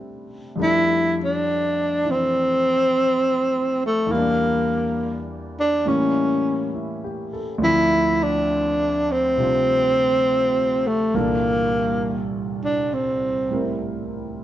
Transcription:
0.00 0.54 C3 medium
0.00 0.56 G3 soft
0.00 0.57 A3 soft
0.00 0.58 C4 soft
0.00 0.58 D4 soft
0.00 0.60 E4 medium
0.56 4.10 F2 soft
0.56 4.10 F3 soft
0.56 4.11 G3 soft
0.56 4.11 A3 soft
0.60 4.12 D4 medium
0.60 1.16 E4 loud
1.24 2.12 D4 medium
2.05 4.08 E3 soft
2.05 4.12 C4 soft
2.11 3.85 C4 loud
3.86 4.13 A3 medium
4.07 5.84 E2 medium
4.07 5.85 E3 soft
4.12 5.85 G3 soft
4.12 5.22 A#3 medium
4.12 5.85 A#3 soft
4.17 5.89 D4 medium
5.60 5.90 D4 medium
5.86 7.61 A2 soft
5.86 7.61 E3 soft
5.86 7.61 G3 soft
5.86 7.61 A#3 soft
5.86 7.62 C#4 medium
5.86 6.74 C#4 medium
6.74 7.29 E4 soft
7.04 7.49 G4 soft
7.33 7.78 A4 soft
7.58 11.12 D2 medium
7.58 11.13 D3 medium
7.58 11.14 F3 medium
7.58 11.14 C4 medium
7.64 8.24 E4 loud
7.64 11.15 E4 medium
8.23 9.13 D4 medium
9.12 10.89 C4 loud
9.37 11.13 C3 soft
9.37 11.14 G3 soft
9.37 11.14 D4 soft
9.37 11.15 F4 soft
10.87 11.17 A3 medium
11.14 14.44 C2 soft
11.14 14.44 G2 soft
11.14 14.44 A#2 soft
11.14 14.44 E3 soft
11.14 12.26 A#3 medium
11.14 14.44 D4 soft
11.14 14.44 A4 medium
12.65 12.95 D4 medium
12.94 13.81 C4 medium
13.51 14.44 A2 soft
13.51 14.44 G3 soft
13.51 14.44 C4 soft
13.51 14.44 E4 soft
13.51 14.44 A#4 soft

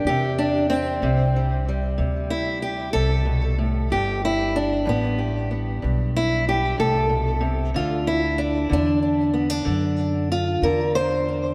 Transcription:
0.05 0.98 E2 medium
0.05 0.38 G4 loud
0.09 1.02 C3 medium
0.39 0.69 D4 loud
0.70 1.98 C4 loud
1.02 1.95 C2 medium
1.02 1.97 C3 medium
1.36 1.68 G3 soft
1.69 5.50 G3 medium
1.98 2.92 D2 medium
1.98 2.93 C3 medium
2.30 2.62 E4 loud
2.62 2.93 G4 medium
2.93 3.88 C2 medium
2.93 3.25 C3 medium
2.93 3.90 A4 loud
3.25 3.58 B2 medium
3.58 3.90 A2 medium
3.90 4.83 G1 medium
3.90 4.84 G2 medium
3.90 4.23 G4 loud
4.25 4.56 E4 loud
4.56 4.87 D4 loud
4.86 5.80 A1 loud
4.86 5.81 G2 medium
4.86 5.20 B3 medium
5.18 6.15 G4 soft
5.51 7.71 B3 soft
5.82 6.77 B1 medium
5.82 7.71 G2 medium
6.16 6.48 E4 loud
6.49 6.79 G4 loud
6.78 7.72 C2 medium
6.78 7.09 A2 medium
6.78 7.75 A4 loud
7.09 7.40 B2 medium
7.41 7.74 C3 medium
7.74 8.68 D2 medium
7.74 8.69 D3 medium
7.74 8.07 F4 loud
8.07 8.39 E4 loud
8.38 8.71 D4 medium
8.70 9.65 E2 medium
8.70 9.64 D3 medium
8.70 9.01 D4 loud
9.02 9.33 D4 soft
9.34 9.50 B3 medium
9.50 10.30 D4 soft
9.65 10.60 F#2 medium
9.65 10.62 D3 medium
10.32 10.63 F4 loud
10.62 11.54 E2 medium
10.62 11.54 D3 medium
10.62 10.95 A#4 loud
10.95 11.54 C5 loud
11.29 11.54 D4 soft

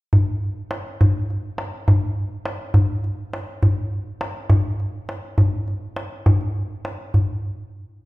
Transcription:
0.13 tombak dum medium
0.71 tombak tek medium
1.01 tombak dum medium
1.30 tombak ka soft
1.58 tombak tek medium
1.88 tombak dum medium
2.45 tombak tek medium
2.74 tombak dum medium
3.04 tombak ka soft
3.33 tombak tek medium
3.63 tombak dum medium
4.21 tombak tek medium
4.50 tombak dum medium
4.80 tombak ka soft
5.09 tombak tek medium
5.38 tombak dum medium
5.68 tombak ka soft
5.96 tombak tek medium
6.26 tombak dum medium
6.41 tombak ka soft
6.85 tombak tek medium
7.14 tombak dum medium

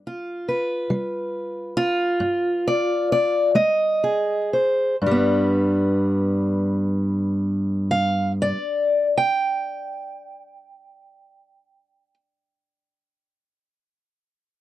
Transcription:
0.00 0.39 G2 medium
0.07 1.76 F4 soft
0.48 2.64 B4 soft
0.90 1.67 G3 medium
1.77 3.56 F4 loud
2.20 3.00 G2 medium
2.68 3.11 D5 medium
3.12 3.55 D5 medium
3.55 4.41 G#3 medium
3.55 4.51 D#5 medium
4.04 4.95 G#4 soft
4.53 4.95 C5 soft
5.02 8.52 G2 medium
5.06 8.56 G3 medium
5.11 8.61 B3 medium
7.91 8.31 F5 medium
8.42 9.06 D5 medium
9.17 12.14 G5 medium

